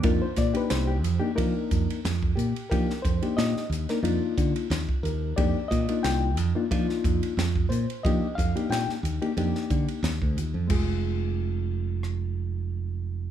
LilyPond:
<<
  \new Staff \with { instrumentName = "Reed electric piano" } { \time 4/4 \key f \minor \tempo 4 = 90 << { bes'16 c''16 d''16 b'16 c''16 g'16 r2 g'8 | bes'8 c''8 ees''8 r2 bes'8 | d''8 ees''8 g''8 r2 c''8 | ees''8 f''8 g''8 r2 r8 |
r1 | } \\ { <bes d' ees' f'>16 r16 <ees' g'>16 <bes d' ees' g'>8. r16 <bes d' ees' g'>16 <bes d' ees' bes'>4 r8 <ees' bes'>16 r16 | <bes d' ees' g'>16 r16 <ees' bes'>16 <bes d' ees' g'>8. r16 <bes d' ees' bes'>16 <bes d' ees' f'>4 r8 <ees' g'>16 r16 | <bes d' ees' g'>16 r16 <ees' bes'>16 <bes d' ees' f'>8. r16 <bes d' ees' f'>16 <bes d' ees' f'>4 r8 <ees' bes'>16 r16 | <bes d' ees' g'>16 r16 <ees' g'>16 <bes d' ees' g'>8. r16 <bes d' ees' g'>16 <bes d' ees' g'>4 r8 <ees' f'>16 r16 |
<aes c' f' aes'>1 | } >> }
  \new Staff \with { instrumentName = "Fingered electric bass" } { \clef bass \time 4/4 \key f \minor f,16 r16 bes,16 r16 c,8 f,16 r16 f16 r16 f,16 r16 f,8 bes,16 r16 | f16 r16 f,16 r16 bes,16 r16 ees,16 r16 f,16 r16 d16 r16 ees,16 r16 ees,8 | f,16 r16 bes,16 r16 c,8 f,16 r16 f16 r16 f,16 r16 f,8 bes,16 r16 | f16 r16 f,16 r16 bes,16 r16 ees,16 r16 f,16 r16 d16 r16 ees,16 d,16 ees,16 f,16 |
f,,1 | }
  \new DrumStaff \with { instrumentName = "Drums" } \drummode { \time 4/4 <bd cymr>8 <hhp bd cymr sn>16 cymr16 <cymr sn>8 <hhp cymr>8 <bd cymr>8 <hhp bd cymr>16 cymr16 <cymr sn>16 bd16 <hhp cymr>16 cymr16 | <bd cymr>16 sn16 <hhp bd cymr>16 cymr16 <cymr sn>16 sn16 <hhp cymr>16 <cymr sn>16 cymr8 <hhp bd cymr>16 cymr16 <cymr sn>16 bd16 <hhp cymr>8 | <bd cymr>8 <hhp bd cymr>16 cymr16 <cymr sn>8 <hhp cymr>8 <bd cymr>16 sn16 <hhp bd cymr>16 cymr16 <cymr sn>16 bd16 <hhp cymr>16 cymr16 | <bd cymr>8 <hhp bd cymr>16 cymr16 <cymr sn>16 sn16 <hhp cymr>16 cymr16 cymr16 sn16 <hhp bd cymr>16 cymr16 <cymr sn>16 bd16 <hhp cymr>8 |
<cymc bd>4 r4 ss4 r4 | }
>>